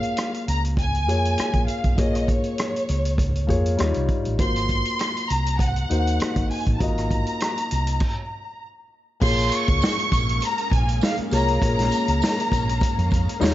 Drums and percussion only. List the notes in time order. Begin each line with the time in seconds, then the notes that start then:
0.03 closed hi-hat
0.17 cross-stick, closed hi-hat
0.34 closed hi-hat
0.48 closed hi-hat
0.65 closed hi-hat
0.77 kick, closed hi-hat
0.95 closed hi-hat
1.09 closed hi-hat
1.25 closed hi-hat
1.38 cross-stick, closed hi-hat
1.53 kick, closed hi-hat
1.68 closed hi-hat
1.84 kick, closed hi-hat
1.98 kick, closed hi-hat
2.15 cross-stick, closed hi-hat
2.28 kick, closed hi-hat
2.44 closed hi-hat
2.58 cross-stick, closed hi-hat
2.76 closed hi-hat
2.89 closed hi-hat
3.05 closed hi-hat
3.18 kick, closed hi-hat
3.35 closed hi-hat
3.49 kick, closed hi-hat
3.66 closed hi-hat
3.78 cross-stick, closed hi-hat
3.94 closed hi-hat
4.08 kick, closed hi-hat
4.25 closed hi-hat
4.39 kick, closed hi-hat
4.56 cross-stick, closed hi-hat
4.69 kick, closed hi-hat
4.85 closed hi-hat
4.99 cross-stick, closed hi-hat
5.17 closed hi-hat
5.30 closed hi-hat
5.46 closed hi-hat
5.59 kick, closed hi-hat
5.76 closed hi-hat
5.90 closed hi-hat
6.07 closed hi-hat
6.20 cross-stick, closed hi-hat
6.36 kick, closed hi-hat
6.50 open hi-hat
6.66 kick, closed hi-hat
6.80 kick, closed hi-hat
6.98 cross-stick, closed hi-hat
7.11 kick, closed hi-hat
7.26 closed hi-hat
7.40 cross-stick, closed hi-hat
7.58 closed hi-hat
7.71 closed hi-hat
7.87 closed hi-hat
8.00 kick, crash
9.22 kick, crash
9.39 closed hi-hat
9.52 closed hi-hat, tambourine
9.68 kick, closed hi-hat
9.82 snare, tambourine
9.99 closed hi-hat
10.12 kick, closed hi-hat, tambourine
10.29 closed hi-hat
10.41 closed hi-hat, tambourine
10.58 closed hi-hat
10.71 kick, closed hi-hat
10.89 closed hi-hat
11.01 snare, tambourine
11.17 closed hi-hat
11.31 closed hi-hat, tambourine
11.48 closed hi-hat
11.62 kick, closed hi-hat
11.79 snare, closed hi-hat
11.91 closed hi-hat, tambourine
12.08 closed hi-hat
12.22 snare, tambourine
12.40 closed hi-hat
12.52 kick, closed hi-hat, tambourine
12.69 closed hi-hat
12.81 kick, closed hi-hat, tambourine
12.99 closed hi-hat
13.11 kick, closed hi-hat, tambourine
13.29 closed hi-hat
13.41 snare, tambourine